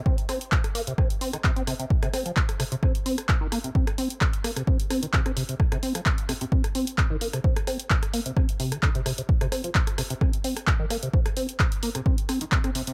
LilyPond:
<<
  \new Staff \with { instrumentName = "Acid bass" } { \clef bass \time 4/4 \key bes \lydian \tempo 4 = 130 c'16 r16 c'16 r8. bes16 c16 c'16 r16 c'16 ees16 c16 c'16 c16 c16 | r16 c16 c'16 f16 r8 c16 c16 c'16 r16 c'16 r8 ees16 bes16 c16 | c'16 r16 c'16 r8. bes16 c16 c'16 r16 c'16 ees16 c16 c'16 c16 c16 | r16 c16 c'16 f16 r8 c16 c16 c'16 r16 c'16 r8 ees16 bes16 c16 |
c'16 r16 c'16 r8. bes16 c16 c'16 r16 c16 ees16 d16 c16 c16 c16 | r16 c16 c'16 f16 r8 c16 c16 c'16 r16 c'16 r8 ees16 bes16 c16 | c'16 r16 c'16 r8. bes16 c16 c'16 r16 c'16 ees16 c16 c'16 c16 c16 | }
  \new DrumStaff \with { instrumentName = "Drums" } \drummode { \time 4/4 bd16 hh16 <hho ss>16 hh16 <hc bd>16 <hh ss>16 hho16 hh16 <bd ss>16 hh16 hho16 <hh ss>16 <hc bd>16 hh16 <hho ss>16 hh16 | bd16 <hh ss>16 <hho ss>16 hh16 <hc bd>16 <hh ss>16 <hho ss>16 hh16 <bd ss>16 hh16 hho16 <hh ss>16 <hc bd>8 <hho ss>16 hh16 | bd16 <hh ss>16 hho16 hh16 <hc bd ss>16 hh16 <hho ss>16 <hh ss>16 bd16 hh16 <hho ss>16 hh16 <hc bd>16 <hh ss>16 hho16 hh16 | <bd ss>16 <hh ss>16 hho16 <hh ss>16 <hc bd>16 hh16 <hho ss>16 hh16 bd16 <hh ss>16 hho16 hh16 <hc bd ss>8 hho16 <hh ss>16 |
bd16 <hh ss>16 <hho ss>16 hh16 <hc bd>16 <hh ss>16 hho16 hh16 <bd ss>16 hh16 hho16 <hh ss>16 <hc bd>16 hh16 <hho ss>16 hh16 | bd16 <hh ss>16 <hho ss>16 hh16 <hc bd>16 <hh ss>16 <hho ss>16 hh16 <bd ss>16 hh16 hho16 <hh ss>16 <hc bd>8 <hho ss>16 hh16 | bd16 <hh ss>16 hho16 hh16 <hc bd ss>16 hh16 hho16 <hh ss>16 bd16 hh16 <hho ss>16 hh16 <hc bd>16 <hh ss>16 hho16 hh16 | }
>>